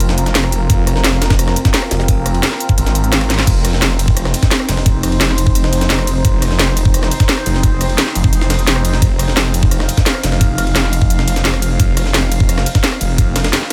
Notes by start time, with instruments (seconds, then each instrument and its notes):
Already playing: detuned saw bass F1, ambient pad C4 F4 A#4
0.00 closed hi-hat, ride
0.09 snare
0.18 detuned saw bass F1, closed hi-hat, ride
0.26 snare, closed hi-hat
0.35 snare, closed hi-hat, ride
0.44 cross-stick, ride
0.52 closed hi-hat, ride
0.70 detuned saw bass F1, kick, closed hi-hat, ride
0.87 cross-stick, closed hi-hat, ride
0.96 snare
1.04 detuned saw bass F1, snare, closed hi-hat, ride
1.22 snare, closed hi-hat, ride
1.30 kick, snare, ride
1.39 cross-stick, closed hi-hat, ride
1.48 cross-stick, snare
1.56 closed hi-hat, ride
1.65 kick, snare, closed hi-hat
1.74 snare, closed hi-hat, ride
1.82 cross-stick
1.91 detuned saw bass F1, snare, closed hi-hat, ride
2.00 snare
2.08 kick, closed hi-hat, ride
2.26 cross-stick, closed hi-hat, ride
2.34 ride
2.43 snare, closed hi-hat, ride
2.52 snare
2.60 closed hi-hat, ride
2.69 kick, closed hi-hat
2.78 detuned saw bass G#1, closed hi-hat, ride
2.86 snare, closed hi-hat
2.95 closed hi-hat, ride
3.04 closed hi-hat
3.12 snare, closed hi-hat, ride
3.21 cross-stick, ride
3.30 snare, closed hi-hat
3.39 snare, ride
3.47 detuned saw bass F1, ambient pad D#4 C5, kick, closed hi-hat, crash, ride
3.65 cross-stick, closed hi-hat, ride
3.73 snare
3.82 detuned saw bass F1, snare, closed hi-hat, ride
3.99 closed hi-hat, ride
4.08 kick
4.17 cross-stick, closed hi-hat, ride
4.25 cross-stick, snare
4.34 closed hi-hat, ride
4.43 kick, snare, closed hi-hat
4.51 snare, closed hi-hat, ride
4.60 cross-stick
4.69 detuned saw bass F1, snare, closed hi-hat, ride
4.77 snare
4.86 kick, closed hi-hat, ride
5.03 cross-stick, closed hi-hat, ride
5.12 ride
5.21 detuned saw bass F1, snare, closed hi-hat, ride
5.29 snare
5.38 closed hi-hat, ride
5.47 kick
5.55 closed hi-hat, ride
5.64 snare
5.73 detuned saw bass F1, closed hi-hat, ride
5.81 snare, closed hi-hat
5.90 snare, closed hi-hat, ride
5.99 cross-stick, ride
6.07 closed hi-hat, ride
6.25 detuned saw bass F1, kick, closed hi-hat, ride
6.42 cross-stick, closed hi-hat, ride
6.51 snare
6.59 detuned saw bass F1, snare, closed hi-hat, ride
6.77 closed hi-hat, ride
6.85 kick
6.94 cross-stick, closed hi-hat, ride
7.03 cross-stick, snare
7.11 closed hi-hat, ride
7.20 kick, snare, closed hi-hat
7.29 snare, closed hi-hat, ride
7.37 cross-stick
7.46 detuned saw bass F1, closed hi-hat, ride
7.55 snare
7.63 kick, closed hi-hat, ride
7.81 cross-stick, closed hi-hat, ride
7.89 ride
7.98 snare, closed hi-hat, ride
8.07 snare
8.15 detuned saw bass F1, closed hi-hat, ride
8.24 kick
8.33 closed hi-hat, ride
8.41 snare
8.50 snare, closed hi-hat, ride
8.59 closed hi-hat
8.67 detuned saw bass F1, snare, closed hi-hat, ride
8.76 cross-stick
8.85 closed hi-hat, ride
8.93 snare
9.02 detuned saw bass F1, ambient pad F5, kick, closed hi-hat, ride
9.19 cross-stick, closed hi-hat, ride
9.28 snare
9.37 detuned saw bass F1, snare, closed hi-hat, ride
9.54 closed hi-hat, ride
9.63 kick
9.71 cross-stick, closed hi-hat, ride
9.80 cross-stick, snare
9.89 closed hi-hat, ride
9.97 kick, snare, closed hi-hat
10.06 snare, closed hi-hat, ride
10.15 cross-stick
10.23 detuned saw bass F1, snare, closed hi-hat, ride
10.32 snare
10.41 kick, closed hi-hat, ride
10.58 cross-stick, closed hi-hat, ride
10.67 ride
10.76 detuned saw bass F1, snare, closed hi-hat, ride
10.84 snare
10.93 closed hi-hat, ride
11.02 kick
11.10 closed hi-hat, ride
11.19 snare
11.28 detuned saw bass F1, closed hi-hat, ride
11.36 snare, closed hi-hat
11.45 snare, closed hi-hat, ride
11.54 cross-stick, ride
11.62 closed hi-hat, ride
11.80 detuned saw bass F1, kick, closed hi-hat, ride
11.97 cross-stick, closed hi-hat, ride
12.06 snare
12.14 detuned saw bass F1, snare, closed hi-hat, ride
12.32 closed hi-hat, ride
12.40 kick
12.49 cross-stick, closed hi-hat, ride
12.58 cross-stick, snare
12.66 closed hi-hat, ride
12.75 kick, snare, closed hi-hat
12.84 snare, closed hi-hat, ride
12.92 cross-stick
13.01 detuned saw bass F1, closed hi-hat, ride
13.18 kick, closed hi-hat, ride
13.36 cross-stick, snare, closed hi-hat, ride
13.44 snare, ride
13.53 snare, closed hi-hat, ride
13.62 snare